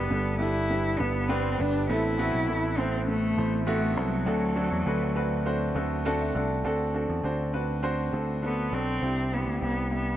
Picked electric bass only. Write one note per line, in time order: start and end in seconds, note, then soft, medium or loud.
0.10 0.96 G1 loud
1.00 1.55 G1 medium
1.60 1.87 G1 medium
1.89 2.30 A1 loud
2.34 2.49 B1 medium
2.49 3.34 A1 loud
3.38 3.97 A1 loud
3.97 4.25 C2 medium
4.27 4.68 D2 loud
4.71 4.85 E2 medium
4.86 5.71 D2 loud
5.75 6.31 D2 medium
6.35 6.62 C2 medium
6.64 7.06 D2 medium
7.09 7.23 E2 medium
7.23 8.09 D2 medium
8.13 8.69 D2 medium
8.72 9.00 B1 medium
9.02 9.44 C2 medium
9.47 9.61 D2 medium
9.61 10.17 C2 medium